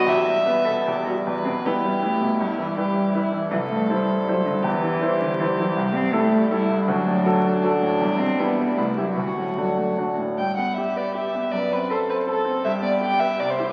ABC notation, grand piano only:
X:1
M:3/4
L:1/8
Q:1/4=159
K:Em
V:1 name="Grand piano" clef=bass
E,, G, B, B,, E,, G, | E,, B,, [G,EB] G, [G,EB] B,, | G,, E, [G,EB] G, [G,EB] E, | C,, G,, [G,Ec] G, [G,Ec] G,, |
E,, E, [G,Ec] G, [G,Ec] E, | [K:G] C,, G,, [G,EA] G, [G,EA] G,, | D,, A,, [F,FA] F, [F,FA] A,, | E,, B,, [G,EG] G, C,, [EG] |
D,, A,, [A,DF] A, [A,DF] A,, | G,, B, G B G B, | F,, C A c A C | G,, B, G B C,, [EG] |]